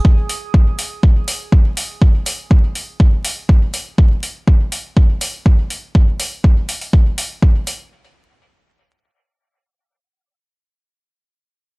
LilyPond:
\new DrumStaff \with { instrumentName = "Drums" } \drummode { \time 4/4 \tempo 4 = 122 bd8 hho8 bd8 hho8 bd8 hho8 bd8 hho8 | bd8 hho8 bd8 hho8 bd8 hho8 bd8 hho8 | bd8 hho8 bd8 hho8 bd8 hho8 bd8 hho8 | bd8 hho8 bd8 hho16 hho16 bd8 hho8 bd8 hho8 |
r4 r4 r4 r4 | r4 r4 r4 r4 | }